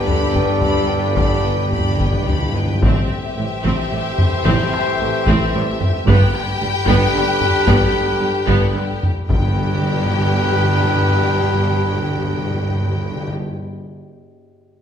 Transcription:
Already playing: double bass section G1, cello section G2, trombone section D3 G3, french horn section B3 G4, trumpet D5
0.06 viola section D4, violin section G4 B5, taiko low
0.13 timpani G2
0.32 timpani G2, viola section B3, violin section B4 G5, taiko
0.51 timpani G2
0.58 timpani G2, violin section G4, taiko low
0.62 timpani G2, viola section D4, violin section B5
0.74 timpani G2
0.82 timpani G2
0.87 timpani G2, viola section B3, violin section B4 G5
0.97 timpani G2
1.05 timpani G2
1.12 timpani G2, violin section G4
1.17 viola section D4, violin section B5, taiko
1.28 timpani G2
1.36 timpani G2
1.43 timpani G2, viola section B3, violin section B4 G5
1.50 timpani G2
1.58 timpani G2
1.65 timpani G2
1.72 timpani G2, viola section D4, violin section G4 B5, taiko low
1.82 timpani G2
1.89 timpani G2
1.97 timpani G2, viola section B3, violin section B4, taiko
2.01 timpani G2, violin section G5
2.11 timpani G2
2.19 timpani G2
2.26 timpani G2, viola section D4, violin section G4 B5, taiko low
2.34 timpani G2
2.42 timpani G2
2.49 timpani G2
2.54 timpani G2, viola section B3, violin section B4 G5
2.65 timpani G2
2.73 timpani G2
2.82 double bass section A1, cello section A2, trombone section E3 A3, french horn section C4 G4, viola section C4, violin section G4 E5, trumpet C5, taiko
3.36 double bass section A1, cello section A2, viola section A3
3.63 double bass section A1, cello section A2, viola section C4, taiko
3.90 double bass section A1, cello section A2, viola section G3
4.18 taiko low-mid
4.45 double bass section A1, cello section A2, viola section C4, taiko
4.73 taiko rim
4.99 double bass section A1, cello section A2, viola section A3
5.25 double bass section A1, cello section A2, viola section C4, taiko
5.53 double bass section A1, cello section A2, viola section G3
5.81 taiko low-mid
6.06 double bass section G1, cello section G2, trombone section D3 G3, viola section B3, french horn section D4 G4, violin section G4 G5, trumpet B4, taiko
6.34 taiko rim
6.60 double bass section G1, cello section G2, viola section G3
6.87 double bass section G1, cello section G2, viola section B3, taiko
7.13 double bass section G1, cello section G2, viola section D3
7.41 taiko low-mid
7.67 double bass section G1, cello section G2, viola section B3, taiko
8.20 double bass section G1, cello section G2, viola section G3
8.47 double bass section G1, cello section G2, viola section B3, taiko
8.74 double bass section G1, cello section G2, viola section D3
9.03 taiko low-mid
9.29 double bass section G1, timpani G2, cello section G2, trombone section D3 G3, viola section B3, french horn section D4 G4, violin section G4 G5, trumpet B4, taiko
9.36 timpani G2
9.42 timpani G2
9.48 timpani G2
9.55 timpani G2
9.61 timpani G2
9.67 timpani G2
9.73 timpani G2
9.80 timpani G2
9.87 timpani G2
9.93 timpani G2
9.99 timpani G2
10.06 timpani G2
10.12 timpani G2
10.19 timpani G2
10.25 timpani G2
10.31 timpani G2
10.37 timpani G2
10.44 timpani G2
10.50 timpani G2
10.56 timpani G2
10.62 timpani G2
10.69 timpani G2
10.75 timpani G2
10.82 timpani G2
10.88 timpani G2
10.95 timpani G2
11.02 timpani G2
11.08 timpani G2
11.15 timpani G2
11.21 timpani G2
11.27 timpani G2
11.33 timpani G2
11.39 timpani G2
11.46 timpani G2
11.52 timpani G2
11.59 timpani G2
11.66 timpani G2
11.72 timpani G2
11.78 timpani G2
11.85 timpani G2
11.91 timpani G2
11.97 timpani G2
12.04 timpani G2
12.10 timpani G2
12.17 timpani G2
12.24 timpani G2
12.30 timpani G2
12.36 timpani G2
12.44 timpani G2
12.50 timpani G2
12.56 timpani G2
12.62 timpani G2
12.69 timpani G2
12.75 timpani G2
12.82 timpani G2
12.89 timpani G2
12.95 timpani G2
13.02 timpani G2
13.09 timpani G2
13.15 timpani G2
13.21 timpani G2
13.27 timpani G2

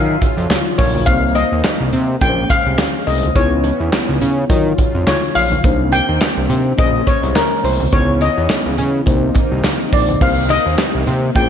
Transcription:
Already playing: analog synth pad C#3 F#3 F4, analog synth bass D#3, fm electric piano F#3 D#4 F4 C#5, steel pan F5
0.22 kick, closed hi-hat, muted conga
0.37 analog synth bass F2, closed hi-hat
0.50 snare, clap, closed hi-hat, high conga
0.78 analog synth bass A#1, steel pan C#5, kick, open hi-hat
0.95 high conga
1.06 analog synth bass C2, analog synth pad D#3 A#3 D#4, fm electric piano A#3 C4 D#4 C5, steel pan F5, kick, closed hi-hat, muted conga
1.35 steel pan D#5, closed hi-hat, muted conga
1.52 analog synth bass D#2
1.64 snare, clap, closed hi-hat, high conga
1.80 analog synth bass C2
1.92 analog synth bass C3, closed hi-hat, low conga
2.21 analog synth bass A#1, analog synth pad C#3 G#3 C#4, fm electric piano A#3 C#4 G#4 A#4, steel pan G5, kick, closed hi-hat, muted conga
2.29 fm electric piano C5
2.49 steel pan F5, kick, closed hi-hat, muted conga
2.66 analog synth bass C2
2.78 snare, clap, closed hi-hat, high conga
3.07 analog synth bass C2, steel pan D#5, open hi-hat
3.23 closed hi-hat, high conga
3.35 analog synth bass C#2, analog synth pad E3 B3 C#4, fm electric piano B3 D#4 E4 C#5, steel pan C#5, kick, closed hi-hat, muted conga
3.64 closed hi-hat, muted conga
3.80 analog synth bass E2
3.93 snare, clap, closed hi-hat, high conga
4.09 analog synth bass C#2
4.21 analog synth bass C#3, closed hi-hat, low conga
4.49 analog synth pad C#3 F#3 F4, analog synth bass D#3, fm electric piano F#3 D#4 F4 C#5, kick, closed hi-hat, muted conga
4.78 kick, closed hi-hat, muted conga
4.95 analog synth bass F2
5.07 steel pan C#5, snare, clap, closed hi-hat, high conga
5.35 analog synth bass A#1, steel pan F5, open hi-hat
5.52 closed hi-hat, high conga
5.64 analog synth bass C2, analog synth pad D#3 A#3 C4, fm electric piano A#3 D4 D#4 C5, kick, closed hi-hat, muted conga
5.92 steel pan G5, closed hi-hat, muted conga
6.09 analog synth bass D#2
6.21 snare, clap, closed hi-hat, high conga
6.37 analog synth bass C2
6.49 analog synth bass C3, closed hi-hat, low conga
6.78 analog synth bass A#1, analog synth pad C#3 G#3 C#4, fm electric piano A#3 C#4 G#4 C5, steel pan D#5, kick, closed hi-hat, muted conga
7.07 steel pan C#5, kick, closed hi-hat, muted conga
7.23 analog synth bass C2, closed hi-hat
7.35 steel pan A#4, snare, clap, closed hi-hat, high conga
7.64 analog synth bass C2, steel pan C5, open hi-hat
7.80 high conga
7.92 analog synth bass C#2, analog synth pad E3 B3 C#4, fm electric piano B3 D#4 E4 C#5, steel pan C#5, kick, closed hi-hat
8.21 steel pan D#5, closed hi-hat, muted conga
8.38 analog synth bass E2
8.50 snare, clap, closed hi-hat, high conga
8.66 analog synth bass C#2
8.77 analog synth bass C#3, closed hi-hat, low conga
9.06 analog synth bass C2, analog synth pad D#3 A#3 D#4, fm electric piano A#3 C4 D#4 C5, kick, closed hi-hat, muted conga
9.35 kick, closed hi-hat, muted conga
9.52 analog synth bass C2
9.63 snare, clap, closed hi-hat, high conga
9.93 analog synth bass A#1, steel pan D5, kick, open hi-hat
10.08 closed hi-hat, high conga
10.20 analog synth bass C2, analog synth pad D#3 A#3 D#4, fm electric piano A#3 C4 D#4 G4 C5, steel pan F5, kick, crash, muted conga
10.49 steel pan D#5, closed hi-hat, muted conga
10.66 analog synth bass D#2
10.78 snare, clap, closed hi-hat, high conga
10.95 analog synth bass C2
11.07 analog synth bass C3, closed hi-hat, low conga
11.35 analog synth bass A#1, analog synth pad C#3 G#3 C#4, fm electric piano A#3 C#4 F4 G#4 A#4, steel pan G5, kick, closed hi-hat, muted conga
11.43 fm electric piano C5

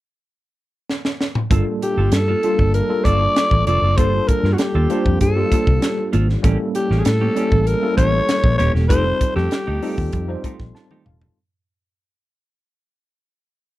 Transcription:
0.90 snare
1.05 snare
1.21 snare
1.35 mid tom
1.50 fingered electric bass G1, tine electric piano G3 A#3 D4 F4 A4, clean electric guitar A#3 F4 A4, kick, closed hi-hat
1.67 muted clean electric guitar stroke
1.82 alto saxophone G4, muted clean electric guitar stroke, closed hi-hat
1.97 fingered electric bass G1, clean electric guitar A#3 F4 A4
2.12 fingered electric bass G2, alto saxophone A4, snare, closed hi-hat
2.28 clean electric guitar A#3 F4 A4
2.43 tine electric piano G3 A#3 D4 F4 A4, clean electric guitar A#3 F4 A4, closed hi-hat
2.59 fingered electric bass G1, muted clean electric guitar stroke, kick
2.74 alto saxophone A#4, closed hi-hat
2.89 tine electric piano G3 A#3 D4 F4 A4, muted clean electric guitar stroke
3.04 fingered electric bass G1, clean electric guitar A#3 F4 A4, alto saxophone D5, kick, closed hi-hat
3.21 muted clean electric guitar stroke
3.36 muted clean electric guitar stroke, snare, closed hi-hat
3.51 fingered electric bass A1, muted clean electric guitar stroke, kick
3.66 fingered electric bass F1, clean electric guitar A#3 F4 A4, alto saxophone D5, closed hi-hat
3.82 fingered electric bass F#1, clean electric guitar A#3 F4 A4
3.97 fingered electric bass G1, tine electric piano G3 A#3 D4 F4 A4, clean electric guitar A#3 F4 A4, alto saxophone C5, kick, closed hi-hat
4.14 muted clean electric guitar stroke
4.28 alto saxophone A#4, muted clean electric guitar stroke, kick, closed hi-hat
4.43 fingered electric bass G2, clean electric guitar A#3 F4 A#4, snare
4.53 alto saxophone F#4
4.58 alto saxophone G4, muted clean electric guitar stroke, snare, closed hi-hat
4.75 fingered electric bass D#2, clean electric guitar A#3 F4 A4
4.90 tine electric piano G3 A#3 D4 F4 C5, clean electric guitar A#3 F4 A4, closed hi-hat
5.06 fingered electric bass F2, kick
5.21 fingered electric bass G2, alto saxophone A4, kick, closed hi-hat
5.35 tine electric piano G3 A#3 D4 F4 G4, muted clean electric guitar stroke
5.52 clean electric guitar A#3 F4 A4, kick, closed hi-hat
5.67 fingered electric bass C2, muted clean electric guitar stroke, kick
5.82 snare, closed hi-hat
5.98 muted clean electric guitar stroke
6.13 fingered electric bass G#1, clean electric guitar A#3 F4 A4, closed hi-hat
6.29 snare
6.42 fingered electric bass A1, tine electric piano G3 A#3 C#4 E4 A4, clean electric guitar A#3 C#4 G4, kick, closed hi-hat
6.60 muted clean electric guitar stroke
6.75 alto saxophone G4, muted clean electric guitar stroke, closed hi-hat
6.91 fingered electric bass A1, clean electric guitar A#3 C#4 G4, snare
6.99 alto saxophone G#4
7.05 fingered electric bass A2, alto saxophone A4, muted clean electric guitar stroke, snare, closed hi-hat
7.21 clean electric guitar A#3 C#4 G4
7.35 tine electric piano G3 A#3 C#4 E4 A4, clean electric guitar A#3 C#4 G4, closed hi-hat
7.52 fingered electric bass A1, kick
7.61 alto saxophone A4
7.67 alto saxophone A#4, closed hi-hat
7.82 tine electric piano G3 A#3 C#4 E4 A4, muted clean electric guitar stroke
7.97 fingered electric bass A1, clean electric guitar A#3 C#4 G4, alto saxophone C#5, kick, closed hi-hat
8.13 muted clean electric guitar stroke
8.28 muted clean electric guitar stroke, snare, closed hi-hat
8.44 fingered electric bass A#1, muted clean electric guitar stroke, kick
8.58 fingered electric bass D#1, clean electric guitar A#3 C#4 G4, alto saxophone C#5, closed hi-hat
8.74 fingered electric bass E1, clean electric guitar A#3 C#4 G4, snare
8.89 fingered electric bass F1, tine electric piano G3 C4 D#4 F4 A4, clean electric guitar A3 D#4 G4, alto saxophone C5, kick, closed hi-hat
9.05 muted clean electric guitar stroke
9.21 muted clean electric guitar stroke, kick, closed hi-hat
9.36 fingered electric bass F2, clean electric guitar A3 D#4 A4, alto saxophone G4, snare
9.51 snare, closed hi-hat
9.67 fingered electric bass D2, clean electric guitar A3 D#4 G4
9.81 tine electric piano G3 C4 D#4 F4 A4, clean electric guitar A3 D#4 G4, open hi-hat
9.98 fingered electric bass D#2, kick
10.12 fingered electric bass F2, kick, closed hi-hat
10.28 tine electric piano G3 C4 D#4 F4 C5, muted clean electric guitar stroke
10.44 clean electric guitar A3 D#4 G4, tine electric piano C6, kick, closed hi-hat
10.60 fingered electric bass A#1, muted clean electric guitar stroke, kick, snare
10.75 tine electric piano A5, muted clean electric guitar stroke, snare
10.91 clean electric guitar A3 D#4 G4, high tom
11.05 fingered electric bass E1, tine electric piano F5, mid tom
11.21 muted clean electric guitar stroke, floor tom

